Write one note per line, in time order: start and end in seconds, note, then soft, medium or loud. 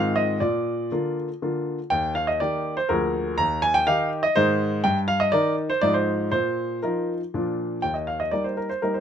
0.00 0.40 G#2 medium
0.00 0.37 D#3 soft
0.00 0.37 C4 soft
0.00 0.38 F4 soft
0.00 0.16 F5 medium
0.16 0.41 D#5 medium
0.40 0.90 A#2 medium
0.40 1.15 D5 medium
0.92 1.27 D3 soft
0.92 1.28 A#3 soft
0.92 1.28 F4 soft
1.42 1.78 D3 soft
1.42 1.78 A#3 soft
1.42 1.78 F4 soft
1.90 2.39 D#2 medium
1.90 2.13 G5 medium
2.15 2.28 F5 medium
2.27 2.40 D#5 medium
2.40 2.76 D#3 soft
2.40 2.76 A#3 soft
2.40 2.76 G4 soft
2.40 2.73 D5 medium
2.77 2.89 C5 medium
2.89 3.37 D2 medium
2.89 3.34 F3 soft
2.89 3.35 A#3 soft
2.89 3.35 G#4 soft
2.89 3.34 A#4 medium
3.38 3.85 D#2 medium
3.38 3.62 A#5 medium
3.62 3.74 G#5 medium
3.74 3.86 G5 medium
3.87 4.22 D#3 soft
3.87 4.22 D#4 soft
3.87 4.23 G4 medium
3.87 4.08 F5 medium
4.23 4.35 D#5 medium
4.36 4.83 G#2 medium
4.36 4.80 D#3 soft
4.36 4.80 D#4 medium
4.36 4.81 G#4 soft
4.36 4.80 C5 medium
4.84 5.31 G2 medium
4.84 4.98 G5 medium
5.08 5.20 F5 medium
5.20 5.32 D#5 medium
5.32 5.68 D#3 soft
5.32 5.68 D#4 soft
5.32 5.69 A#4 medium
5.32 5.54 D5 medium
5.70 5.82 C5 medium
5.81 6.31 G#2 medium
5.81 6.28 F3 soft
5.81 6.29 D#4 soft
5.81 6.29 F4 soft
5.81 5.94 D5 medium
5.94 6.30 C5 medium
6.31 6.81 A#2 medium
6.31 6.78 C5 medium
6.83 7.19 F3 soft
6.83 7.20 D#4 soft
6.83 7.20 F4 soft
6.83 7.13 A#4 medium
7.34 7.82 A#2 medium
7.34 7.80 F3 soft
7.34 7.80 D4 soft
7.34 7.80 F4 soft
7.82 8.31 D#2 soft
7.82 7.95 G5 medium
7.94 8.07 D#5 soft
8.07 8.20 F5 medium
8.20 8.32 D#5 medium
8.31 8.68 G3 soft
8.31 8.68 A#3 soft
8.31 8.68 D#4 soft
8.31 8.44 D5 medium
8.44 8.57 C5 soft
8.57 8.69 A#4 soft
8.69 8.82 C5 medium
8.82 9.00 G3 soft
8.82 9.00 A#3 soft
8.82 9.00 D#4 soft
8.82 8.94 A#4 medium
8.94 9.00 C5 soft